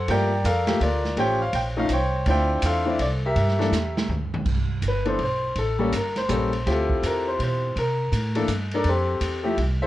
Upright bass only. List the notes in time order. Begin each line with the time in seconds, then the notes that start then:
0.08 G2
0.44 F2
0.80 D2
1.17 A1
1.53 A#1
1.90 C2
2.26 D2
2.63 E2
2.99 C2
3.36 G2
3.71 E2
4.08 D2
4.46 C2
4.82 G1
5.19 B1
5.56 A1
5.93 G1
6.29 A#1
6.66 D2
7.03 E2
7.40 B2
7.76 C3
8.12 A2
8.48 G2
8.85 F2
9.21 E2
9.57 C2